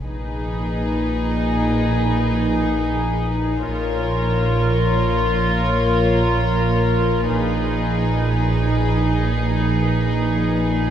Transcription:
0, 0, Header, 1, 7, 480
1, 0, Start_track
1, 0, Tempo, 500000
1, 10466, End_track
2, 0, Start_track
2, 0, Title_t, "Violin section"
2, 0, Program_c, 0, 48
2, 34, Note_on_c, 0, 71, 31
2, 3490, Note_off_c, 0, 71, 0
2, 3529, Note_on_c, 0, 73, 33
2, 6984, Note_off_c, 0, 73, 0
2, 7014, Note_on_c, 0, 71, 36
2, 10466, Note_off_c, 0, 71, 0
2, 10466, End_track
3, 0, Start_track
3, 0, Title_t, "Violin section"
3, 0, Program_c, 1, 48
3, 45, Note_on_c, 1, 68, 32
3, 3496, Note_off_c, 1, 68, 0
3, 3544, Note_on_c, 1, 70, 34
3, 6991, Note_off_c, 1, 70, 0
3, 7022, Note_on_c, 1, 68, 37
3, 10466, Note_off_c, 1, 68, 0
3, 10466, End_track
4, 0, Start_track
4, 0, Title_t, "Viola section"
4, 0, Program_c, 2, 48
4, 39, Note_on_c, 2, 63, 35
4, 3493, Note_off_c, 2, 63, 0
4, 3532, Note_on_c, 2, 65, 35
4, 7016, Note_on_c, 2, 63, 40
4, 7024, Note_off_c, 2, 65, 0
4, 10466, Note_off_c, 2, 63, 0
4, 10466, End_track
5, 0, Start_track
5, 0, Title_t, "Cello section"
5, 0, Program_c, 3, 48
5, 46, Note_on_c, 3, 46, 33
5, 3497, Note_off_c, 3, 46, 0
5, 3529, Note_on_c, 3, 46, 36
5, 6984, Note_off_c, 3, 46, 0
5, 7016, Note_on_c, 3, 46, 38
5, 10466, Note_off_c, 3, 46, 0
5, 10466, End_track
6, 0, Start_track
6, 0, Title_t, "Double bass section"
6, 0, Program_c, 4, 48
6, 44, Note_on_c, 4, 34, 30
6, 3496, Note_off_c, 4, 34, 0
6, 3527, Note_on_c, 4, 34, 33
6, 6983, Note_off_c, 4, 34, 0
6, 7019, Note_on_c, 4, 34, 39
6, 10466, Note_off_c, 4, 34, 0
6, 10466, End_track
7, 0, Start_track
7, 0, Title_t, "Sub bass"
7, 0, Program_c, 5, 38
7, 38, Note_on_c, 5, 34, 52
7, 3493, Note_off_c, 5, 34, 0
7, 3533, Note_on_c, 5, 34, 51
7, 6986, Note_off_c, 5, 34, 0
7, 7019, Note_on_c, 5, 34, 54
7, 10466, Note_off_c, 5, 34, 0
7, 10466, End_track
0, 0, End_of_file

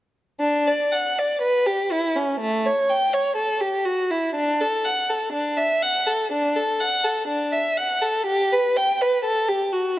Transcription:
0, 0, Header, 1, 2, 480
1, 0, Start_track
1, 0, Key_signature, 2, "major"
1, 0, Tempo, 1032702
1, 185, Time_signature, 4, 2, 24, 8
1, 659, Tempo, 977199
1, 4870, End_track
2, 0, Start_track
2, 0, Title_t, "Violin"
2, 0, Program_c, 0, 40
2, 187, Note_on_c, 0, 62, 63
2, 306, Note_off_c, 0, 62, 0
2, 314, Note_on_c, 0, 74, 47
2, 429, Note_off_c, 0, 74, 0
2, 429, Note_on_c, 0, 78, 52
2, 544, Note_off_c, 0, 78, 0
2, 550, Note_on_c, 0, 74, 50
2, 657, Note_on_c, 0, 71, 59
2, 662, Note_off_c, 0, 74, 0
2, 777, Note_off_c, 0, 71, 0
2, 779, Note_on_c, 0, 67, 48
2, 900, Note_off_c, 0, 67, 0
2, 900, Note_on_c, 0, 64, 49
2, 1021, Note_off_c, 0, 64, 0
2, 1022, Note_on_c, 0, 61, 44
2, 1141, Note_off_c, 0, 61, 0
2, 1142, Note_on_c, 0, 57, 61
2, 1258, Note_off_c, 0, 57, 0
2, 1269, Note_on_c, 0, 73, 47
2, 1383, Note_off_c, 0, 73, 0
2, 1386, Note_on_c, 0, 79, 52
2, 1501, Note_off_c, 0, 79, 0
2, 1502, Note_on_c, 0, 73, 49
2, 1614, Note_on_c, 0, 69, 53
2, 1619, Note_off_c, 0, 73, 0
2, 1732, Note_off_c, 0, 69, 0
2, 1733, Note_on_c, 0, 67, 46
2, 1853, Note_off_c, 0, 67, 0
2, 1854, Note_on_c, 0, 66, 46
2, 1973, Note_off_c, 0, 66, 0
2, 1979, Note_on_c, 0, 64, 45
2, 2094, Note_off_c, 0, 64, 0
2, 2098, Note_on_c, 0, 62, 61
2, 2212, Note_off_c, 0, 62, 0
2, 2225, Note_on_c, 0, 69, 52
2, 2338, Note_off_c, 0, 69, 0
2, 2343, Note_on_c, 0, 78, 54
2, 2458, Note_off_c, 0, 78, 0
2, 2466, Note_on_c, 0, 69, 47
2, 2579, Note_on_c, 0, 62, 54
2, 2581, Note_off_c, 0, 69, 0
2, 2695, Note_off_c, 0, 62, 0
2, 2699, Note_on_c, 0, 76, 52
2, 2818, Note_off_c, 0, 76, 0
2, 2824, Note_on_c, 0, 78, 55
2, 2940, Note_off_c, 0, 78, 0
2, 2943, Note_on_c, 0, 69, 48
2, 3059, Note_off_c, 0, 69, 0
2, 3069, Note_on_c, 0, 62, 56
2, 3180, Note_off_c, 0, 62, 0
2, 3185, Note_on_c, 0, 69, 49
2, 3301, Note_off_c, 0, 69, 0
2, 3303, Note_on_c, 0, 78, 55
2, 3419, Note_off_c, 0, 78, 0
2, 3420, Note_on_c, 0, 69, 50
2, 3536, Note_off_c, 0, 69, 0
2, 3538, Note_on_c, 0, 62, 54
2, 3653, Note_off_c, 0, 62, 0
2, 3656, Note_on_c, 0, 76, 47
2, 3775, Note_off_c, 0, 76, 0
2, 3779, Note_on_c, 0, 78, 53
2, 3898, Note_off_c, 0, 78, 0
2, 3899, Note_on_c, 0, 69, 49
2, 4021, Note_off_c, 0, 69, 0
2, 4021, Note_on_c, 0, 67, 66
2, 4142, Note_off_c, 0, 67, 0
2, 4149, Note_on_c, 0, 71, 55
2, 4266, Note_on_c, 0, 79, 56
2, 4267, Note_off_c, 0, 71, 0
2, 4385, Note_off_c, 0, 79, 0
2, 4390, Note_on_c, 0, 71, 50
2, 4503, Note_on_c, 0, 69, 62
2, 4506, Note_off_c, 0, 71, 0
2, 4620, Note_off_c, 0, 69, 0
2, 4621, Note_on_c, 0, 67, 53
2, 4739, Note_on_c, 0, 66, 48
2, 4741, Note_off_c, 0, 67, 0
2, 4859, Note_off_c, 0, 66, 0
2, 4870, End_track
0, 0, End_of_file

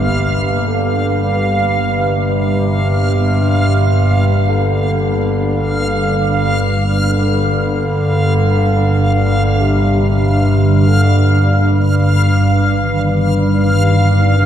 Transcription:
0, 0, Header, 1, 5, 480
1, 0, Start_track
1, 0, Tempo, 500000
1, 13879, End_track
2, 0, Start_track
2, 0, Title_t, "Synth texture"
2, 0, Program_c, 0, 99
2, 0, Note_on_c, 0, 77, 80
2, 13879, Note_off_c, 0, 77, 0
2, 13879, End_track
3, 0, Start_track
3, 0, Title_t, "Analog synth pad"
3, 0, Program_c, 1, 89
3, 0, Note_on_c, 1, 50, 78
3, 0, Note_on_c, 1, 58, 61
3, 0, Note_on_c, 1, 67, 66
3, 11655, Note_off_c, 1, 58, 0
3, 11656, Note_off_c, 1, 67, 0
3, 11661, Note_off_c, 1, 50, 0
3, 11671, Note_on_c, 1, 43, 60
3, 12098, Note_on_c, 1, 51, 70
3, 13128, Note_on_c, 1, 67, 77
3, 13879, Note_off_c, 1, 43, 0
3, 13879, Note_off_c, 1, 51, 0
3, 13879, Note_off_c, 1, 67, 0
3, 13879, End_track
4, 0, Start_track
4, 0, Title_t, "Bass clarinet"
4, 0, Program_c, 2, 71
4, 0, Note_on_c, 2, 48, 89
4, 648, Note_on_c, 2, 50, 77
4, 663, Note_off_c, 2, 48, 0
4, 1557, Note_off_c, 2, 50, 0
4, 1853, Note_on_c, 2, 48, 91
4, 4312, Note_on_c, 2, 50, 82
4, 4327, Note_off_c, 2, 48, 0
4, 6500, Note_off_c, 2, 50, 0
4, 6766, Note_on_c, 2, 50, 84
4, 9227, Note_on_c, 2, 48, 78
4, 9241, Note_off_c, 2, 50, 0
4, 10445, Note_on_c, 2, 50, 68
4, 10459, Note_off_c, 2, 48, 0
4, 11357, Note_off_c, 2, 50, 0
4, 13879, End_track
5, 0, Start_track
5, 0, Title_t, "Synth drone"
5, 0, Program_c, 3, 95
5, 0, Note_on_c, 3, 31, 69
5, 0, Note_on_c, 3, 43, 72
5, 13879, Note_off_c, 3, 31, 0
5, 13879, Note_off_c, 3, 43, 0
5, 13879, End_track
0, 0, End_of_file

